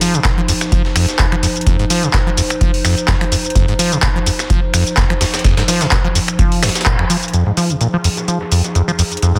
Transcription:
Already playing: F3 D#4 C5
0.01 F3, closed hi-hat, open hi-hat, shaker
0.14 C3, closed hi-hat, shaker
0.24 A#2, kick, snare, clap, closed hi-hat, shaker
0.38 F3
0.48 F2, closed hi-hat, open hi-hat, shaker
0.61 finger snap, snare, shaker
0.72 F3, kick, closed hi-hat, shaker
0.85 snare
0.96 F2, finger snap, closed hi-hat, open hi-hat, shaker
1.08 snare, closed hi-hat, shaker
1.19 F2, kick, snare, clap, closed hi-hat, shaker
1.32 F3, finger snap
1.43 F2, closed hi-hat, open hi-hat, shaker
1.56 closed hi-hat, shaker
1.61 closed hi-hat
1.66 F2, kick, closed hi-hat, shaker
1.79 G#2, closed hi-hat
1.90 F3, snare, closed hi-hat, open hi-hat, shaker
2.03 C3, closed hi-hat, shaker
2.13 A#2, kick, snare, clap, closed hi-hat, shaker
2.27 F3
2.37 F2, closed hi-hat, open hi-hat, shaker
2.50 finger snap, closed hi-hat, shaker
2.61 F3, kick, closed hi-hat, shaker
2.74 open hi-hat
2.85 F2, finger snap, closed hi-hat, open hi-hat, shaker
2.98 closed hi-hat, shaker
3.08 F2, kick, snare, clap, closed hi-hat, shaker
3.21 F3, finger snap, closed hi-hat
3.32 F2, closed hi-hat, open hi-hat, shaker
3.45 closed hi-hat, shaker
3.50 closed hi-hat
3.55 F2, kick, closed hi-hat, shaker
3.68 G#2, closed hi-hat
3.79 F3, closed hi-hat, open hi-hat, shaker
3.92 C3, closed hi-hat, shaker
4.02 A#2, kick, snare, clap, closed hi-hat, shaker
4.16 F3
4.26 F2, closed hi-hat, open hi-hat, shaker
4.39 finger snap, snare, closed hi-hat, shaker
4.50 F3, kick, closed hi-hat, shaker
4.74 F2, finger snap, open hi-hat, shaker
4.87 closed hi-hat, shaker
4.97 F2, kick, snare, clap, closed hi-hat, shaker
5.10 F3, finger snap
5.21 F2, snare, closed hi-hat, open hi-hat, shaker
5.34 snare, closed hi-hat, shaker
5.39 closed hi-hat
5.44 F2, kick, snare, closed hi-hat, shaker
5.57 G#2, snare, closed hi-hat
5.68 F3, snare, closed hi-hat, open hi-hat, shaker
5.81 C3, snare, closed hi-hat, shaker
5.91 A#2, kick, snare, clap, closed hi-hat, shaker
6.04 F3
6.15 F2, closed hi-hat, open hi-hat, shaker
6.28 finger snap, closed hi-hat, shaker
6.39 F3, kick, closed hi-hat, shaker
6.52 open hi-hat
6.63 F2, finger snap, snare, closed hi-hat, open hi-hat, shaker
6.69 snare, closed hi-hat
6.75 snare, closed hi-hat, shaker
6.81 snare, closed hi-hat
6.86 A#2, kick, clap, closed hi-hat, shaker
6.99 F2, finger snap
7.10 F3, closed hi-hat, open hi-hat, shaker
7.23 closed hi-hat, shaker
7.28 closed hi-hat
7.33 F2 F3 D#4 G#4, closed hi-hat, shaker
7.46 G#2, closed hi-hat
7.57 F3, closed hi-hat, open hi-hat, shaker
7.70 C3, closed hi-hat, shaker
7.81 A#2, closed hi-hat, shaker
7.94 F3
8.04 F2, closed hi-hat, open hi-hat, shaker
8.17 snare, closed hi-hat, shaker
8.28 F3, closed hi-hat, shaker
8.41 snare
8.52 F2, closed hi-hat, open hi-hat, shaker
8.64 snare, closed hi-hat, shaker
8.75 F2, closed hi-hat, shaker
8.88 F3, shaker
8.99 F2, closed hi-hat, open hi-hat, shaker
9.12 closed hi-hat, shaker
9.17 closed hi-hat
9.22 F2, closed hi-hat, shaker
9.35 G#2, closed hi-hat, shaker

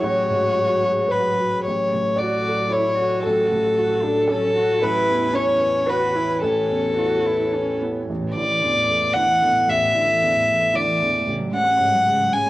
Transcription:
Already playing: F#3 F#4 G#4
0.02 A1 F#4 C#5
0.30 G#2
0.56 F#4
0.84 G#4
1.08 B4 C#5
1.38 F#4
1.64 A1 A4 C#5
1.93 A2
2.16 F#4 D5
2.20 F#4
2.48 A4
2.70 E4 C#5
2.74 C#5
2.99 F#4
3.23 A1 A4
3.52 A2
3.78 F#4
4.03 D4 A4
4.28 C#4 A4 C#5
4.57 F#4
4.82 A1 E3 E4 B4 C#5
5.10 E2
5.34 C#4 E4 C#5
5.61 B4
5.87 F#4 B4 C#5
6.15 E4
6.42 A1 C#4 A4
6.70 E2
6.97 E4 F#4
7.26 E4 B4
7.55 C#4 C#5
7.82 B3 E4
8.08 A1 E2 E3 A4 D5
8.22 A2
8.34 D3 E4 D5
8.47 E3
8.60 E2 D3
8.75 A2
8.86 E2 A3
9.01 A2
9.13 D3 E4 F#5
9.28 E3
9.41 E2 D3
9.53 A2
9.68 A1 E2 E5
9.82 A2
9.94 D3 E4
10.09 E3
10.21 E2 D3
10.36 A2
10.46 E2 A3
10.61 A2
10.73 D3 E4 D5
10.88 E3
11.00 E2 D3
11.13 A2
11.27 A1 C#3 G#3 G#4 C#5
11.38 F#3
11.51 G#3 C#4
11.56 F#5
11.65 C#4
11.79 G#2 G#3
11.93 F#3
12.06 C#3 G#3
12.20 F#3
12.33 G#3 C#4 G#5

